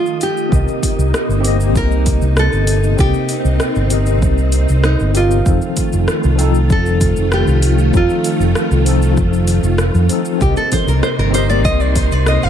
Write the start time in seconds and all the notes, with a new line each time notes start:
Already playing: D#3 F3 A3 C4 D#4 F4 A4 D#5 D#6
0.06 shaker
0.21 G4, open hi-hat, shaker
0.37 shaker
0.49 C2 C3 A#3 C4 D#4 G4, kick
0.53 A#4 D#5, shaker
0.68 shaker
0.83 kick, open hi-hat, shaker
0.99 C2, shaker
1.14 cross-stick, shaker
1.29 G1, shaker
1.40 C4 G4
1.44 A#3 D#5, open hi-hat, shaker
1.60 shaker
1.76 C2 A#4, kick, shaker
1.91 shaker
2.06 kick, open hi-hat, shaker
2.22 C2, shaker
2.37 A4, cross-stick, shaker
2.52 G1, shaker
2.67 open hi-hat, shaker
2.83 shaker
2.97 C2 C4 G4 A#4 D#5, kick, shaker
3.14 shaker
3.29 open hi-hat, shaker
3.44 C2, shaker
3.60 cross-stick, shaker
3.75 G1, shaker
3.90 C4 G4 A#4, open hi-hat, shaker
3.94 D#5
4.06 shaker
4.22 C2, kick, shaker
4.38 shaker
4.52 open hi-hat, shaker
4.69 C2, shaker
4.84 D#4, cross-stick, shaker
5.00 G1, shaker
5.14 C4 F4 G4 A#4 D#5, open hi-hat, shaker
5.31 shaker
5.43 F1 F3 C4 F4, kick, shaker
5.47 D#3 A3 D#4 A4
5.62 shaker
5.77 kick, open hi-hat, shaker
5.93 F1, shaker
6.08 cross-stick, shaker
6.23 C2, shaker
6.36 F3 C4, open hi-hat, shaker
6.41 D#4 A4
6.55 shaker
6.70 F1 A4, kick, shaker
6.86 shaker
7.01 kick, open hi-hat, shaker
7.16 F1, shaker
7.32 G4, cross-stick, shaker
7.47 C2, shaker
7.62 open hi-hat, shaker
7.79 shaker
7.93 F1 F3 C4 D#4 F4 A4, kick, shaker
8.10 shaker
8.24 open hi-hat, shaker
8.40 F1, shaker
8.55 cross-stick, shaker
8.71 C2, shaker
8.85 F3 C4 D#4 A4, open hi-hat, shaker
9.02 shaker
9.17 F1, kick, shaker
9.33 shaker
9.47 open hi-hat, shaker
9.63 F1, shaker
9.78 cross-stick, shaker
9.95 F2, shaker
10.09 F3 C4 D#4 A4, open hi-hat, shaker
10.25 shaker
10.38 C2 C3 A#3 C4 D#4 G4 C5 C6, kick, shaker
10.43 A#4 D#5
10.57 A4, shaker
10.72 C5, kick, open hi-hat, low conga, shaker
10.87 C2 A#4, shaker
11.03 C5, cross-stick, shaker
11.18 G1 A#4, shaker
11.30 C4 G4, open hi-hat
11.34 A#4 C5 D#5, shaker
11.49 D5, high conga, shaker
11.65 C2 D#5, kick, shaker
11.80 D5, shaker
11.96 C5, kick, open hi-hat, shaker
12.11 C2 D5, shaker
12.26 D#5, cross-stick, shaker
12.43 G1 F5, shaker